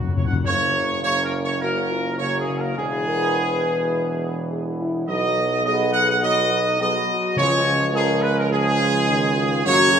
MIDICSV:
0, 0, Header, 1, 6, 480
1, 0, Start_track
1, 0, Key_signature, 6, "major"
1, 0, Tempo, 583658
1, 368, Time_signature, 4, 2, 24, 8
1, 3235, Tempo, 571973
1, 8322, End_track
2, 0, Start_track
2, 0, Title_t, "Trumpet section"
2, 0, Program_c, 0, 61
2, 0, Note_on_c, 0, 66, 48
2, 85, Note_off_c, 0, 66, 0
2, 122, Note_on_c, 0, 73, 55
2, 200, Note_off_c, 0, 73, 0
2, 214, Note_on_c, 0, 78, 59
2, 285, Note_off_c, 0, 78, 0
2, 369, Note_on_c, 0, 73, 95
2, 818, Note_off_c, 0, 73, 0
2, 848, Note_on_c, 0, 73, 94
2, 998, Note_off_c, 0, 73, 0
2, 1016, Note_on_c, 0, 70, 75
2, 1087, Note_off_c, 0, 70, 0
2, 1179, Note_on_c, 0, 73, 75
2, 1323, Note_off_c, 0, 73, 0
2, 1324, Note_on_c, 0, 70, 80
2, 1769, Note_off_c, 0, 70, 0
2, 1799, Note_on_c, 0, 73, 82
2, 1948, Note_off_c, 0, 73, 0
2, 1964, Note_on_c, 0, 68, 69
2, 2111, Note_off_c, 0, 68, 0
2, 2123, Note_on_c, 0, 70, 60
2, 2276, Note_on_c, 0, 68, 89
2, 2281, Note_off_c, 0, 70, 0
2, 3683, Note_off_c, 0, 68, 0
2, 4198, Note_on_c, 0, 75, 97
2, 4644, Note_off_c, 0, 75, 0
2, 4673, Note_on_c, 0, 75, 88
2, 4899, Note_off_c, 0, 75, 0
2, 4909, Note_on_c, 0, 78, 93
2, 5025, Note_off_c, 0, 78, 0
2, 5047, Note_on_c, 0, 78, 81
2, 5155, Note_off_c, 0, 78, 0
2, 5163, Note_on_c, 0, 75, 100
2, 5609, Note_off_c, 0, 75, 0
2, 5647, Note_on_c, 0, 75, 91
2, 6088, Note_off_c, 0, 75, 0
2, 6122, Note_on_c, 0, 73, 101
2, 6564, Note_off_c, 0, 73, 0
2, 6600, Note_on_c, 0, 68, 93
2, 6821, Note_off_c, 0, 68, 0
2, 6830, Note_on_c, 0, 71, 91
2, 6953, Note_off_c, 0, 71, 0
2, 6963, Note_on_c, 0, 70, 80
2, 7080, Note_off_c, 0, 70, 0
2, 7083, Note_on_c, 0, 68, 105
2, 8007, Note_off_c, 0, 68, 0
2, 8037, Note_on_c, 0, 73, 113
2, 8322, Note_off_c, 0, 73, 0
2, 8322, End_track
3, 0, Start_track
3, 0, Title_t, "French horn section"
3, 0, Program_c, 1, 60
3, 0, Note_on_c, 1, 54, 54
3, 118, Note_off_c, 1, 54, 0
3, 1330, Note_on_c, 1, 66, 69
3, 1551, Note_off_c, 1, 66, 0
3, 1570, Note_on_c, 1, 65, 64
3, 1806, Note_off_c, 1, 65, 0
3, 1817, Note_on_c, 1, 66, 67
3, 2286, Note_off_c, 1, 66, 0
3, 2286, Note_on_c, 1, 68, 71
3, 2505, Note_off_c, 1, 68, 0
3, 2527, Note_on_c, 1, 70, 72
3, 2745, Note_off_c, 1, 70, 0
3, 2762, Note_on_c, 1, 71, 80
3, 3717, Note_on_c, 1, 68, 72
3, 3721, Note_off_c, 1, 71, 0
3, 3826, Note_off_c, 1, 68, 0
3, 3969, Note_on_c, 1, 64, 62
3, 4187, Note_off_c, 1, 64, 0
3, 4209, Note_on_c, 1, 66, 70
3, 4683, Note_off_c, 1, 66, 0
3, 4684, Note_on_c, 1, 68, 77
3, 5129, Note_off_c, 1, 68, 0
3, 5160, Note_on_c, 1, 66, 78
3, 5384, Note_off_c, 1, 66, 0
3, 5399, Note_on_c, 1, 63, 64
3, 5623, Note_off_c, 1, 63, 0
3, 5640, Note_on_c, 1, 68, 78
3, 5863, Note_off_c, 1, 68, 0
3, 5893, Note_on_c, 1, 66, 66
3, 6125, Note_off_c, 1, 66, 0
3, 6133, Note_on_c, 1, 65, 84
3, 6601, Note_on_c, 1, 70, 87
3, 6602, Note_off_c, 1, 65, 0
3, 7046, Note_off_c, 1, 70, 0
3, 7078, Note_on_c, 1, 68, 73
3, 7316, Note_on_c, 1, 65, 70
3, 7318, Note_off_c, 1, 68, 0
3, 7424, Note_off_c, 1, 65, 0
3, 7552, Note_on_c, 1, 63, 72
3, 7777, Note_off_c, 1, 63, 0
3, 7799, Note_on_c, 1, 65, 76
3, 8021, Note_off_c, 1, 65, 0
3, 8036, Note_on_c, 1, 66, 85
3, 8259, Note_off_c, 1, 66, 0
3, 8270, Note_on_c, 1, 68, 86
3, 8322, Note_off_c, 1, 68, 0
3, 8322, End_track
4, 0, Start_track
4, 0, Title_t, "Trombone section"
4, 0, Program_c, 2, 61
4, 375, Note_on_c, 2, 49, 61
4, 375, Note_on_c, 2, 58, 62
4, 821, Note_off_c, 2, 49, 0
4, 821, Note_off_c, 2, 58, 0
4, 847, Note_on_c, 2, 58, 61
4, 853, Note_on_c, 2, 49, 57
4, 1295, Note_off_c, 2, 58, 0
4, 1298, Note_off_c, 2, 49, 0
4, 1347, Note_on_c, 2, 49, 57
4, 1347, Note_on_c, 2, 58, 57
4, 1780, Note_off_c, 2, 49, 0
4, 1781, Note_off_c, 2, 58, 0
4, 1811, Note_on_c, 2, 58, 59
4, 1814, Note_on_c, 2, 49, 59
4, 2030, Note_off_c, 2, 49, 0
4, 2041, Note_on_c, 2, 49, 53
4, 2250, Note_off_c, 2, 58, 0
4, 2263, Note_off_c, 2, 49, 0
4, 2276, Note_on_c, 2, 59, 65
4, 2279, Note_on_c, 2, 52, 64
4, 4164, Note_off_c, 2, 59, 0
4, 4189, Note_on_c, 2, 59, 58
4, 4198, Note_off_c, 2, 52, 0
4, 4200, Note_on_c, 2, 54, 65
4, 4639, Note_off_c, 2, 59, 0
4, 4645, Note_off_c, 2, 54, 0
4, 4665, Note_on_c, 2, 54, 59
4, 4671, Note_on_c, 2, 59, 69
4, 5119, Note_off_c, 2, 54, 0
4, 5122, Note_off_c, 2, 59, 0
4, 5152, Note_on_c, 2, 54, 72
4, 5157, Note_on_c, 2, 59, 69
4, 5507, Note_off_c, 2, 54, 0
4, 5508, Note_off_c, 2, 59, 0
4, 5643, Note_on_c, 2, 59, 64
4, 5645, Note_on_c, 2, 54, 72
4, 6086, Note_off_c, 2, 59, 0
4, 6087, Note_off_c, 2, 54, 0
4, 6128, Note_on_c, 2, 56, 70
4, 6132, Note_on_c, 2, 53, 75
4, 6567, Note_off_c, 2, 56, 0
4, 6577, Note_off_c, 2, 53, 0
4, 6587, Note_on_c, 2, 53, 70
4, 6587, Note_on_c, 2, 56, 65
4, 7038, Note_off_c, 2, 56, 0
4, 7039, Note_off_c, 2, 53, 0
4, 7069, Note_on_c, 2, 56, 82
4, 7071, Note_on_c, 2, 53, 70
4, 7521, Note_off_c, 2, 53, 0
4, 7544, Note_on_c, 2, 51, 64
4, 7997, Note_off_c, 2, 51, 0
4, 8000, Note_off_c, 2, 56, 0
4, 8047, Note_on_c, 2, 49, 70
4, 8047, Note_on_c, 2, 58, 80
4, 8322, Note_off_c, 2, 49, 0
4, 8322, Note_off_c, 2, 58, 0
4, 8322, End_track
5, 0, Start_track
5, 0, Title_t, "Timpani"
5, 0, Program_c, 3, 47
5, 13, Note_on_c, 3, 42, 57
5, 59, Note_off_c, 3, 42, 0
5, 69, Note_on_c, 3, 42, 64
5, 129, Note_off_c, 3, 42, 0
5, 139, Note_on_c, 3, 42, 65
5, 197, Note_off_c, 3, 42, 0
5, 207, Note_on_c, 3, 42, 68
5, 258, Note_off_c, 3, 42, 0
5, 268, Note_on_c, 3, 42, 75
5, 329, Note_off_c, 3, 42, 0
5, 365, Note_on_c, 3, 42, 72
5, 1056, Note_off_c, 3, 42, 0
5, 6116, Note_on_c, 3, 49, 88
5, 6800, Note_off_c, 3, 49, 0
5, 8322, End_track
6, 0, Start_track
6, 0, Title_t, "Tuba"
6, 0, Program_c, 4, 58
6, 367, Note_on_c, 4, 30, 64
6, 2246, Note_off_c, 4, 30, 0
6, 2281, Note_on_c, 4, 28, 60
6, 4166, Note_off_c, 4, 28, 0
6, 4199, Note_on_c, 4, 35, 68
6, 5855, Note_off_c, 4, 35, 0
6, 6115, Note_on_c, 4, 37, 74
6, 8002, Note_off_c, 4, 37, 0
6, 8037, Note_on_c, 4, 42, 76
6, 8322, Note_off_c, 4, 42, 0
6, 8322, End_track
0, 0, End_of_file